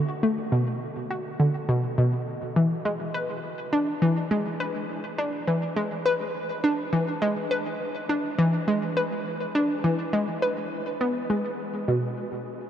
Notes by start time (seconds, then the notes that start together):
0.23 A3
0.52 B2
1.11 F#4
1.40 D3
1.69 B2
1.98 B2
2.56 E3
2.85 G#3
3.14 B4
3.73 D4
4.02 E3
4.31 G#3
4.60 B4
5.18 D4
5.47 E3
5.76 G#3
6.06 B4
6.64 D4
6.93 E3
7.22 G#3
7.51 B4
8.09 D4
8.39 E3
8.68 G#3
8.97 B4
9.55 D4
9.84 E3
10.13 G#3
10.42 B4
11.01 B3
11.30 G#3
11.88 B2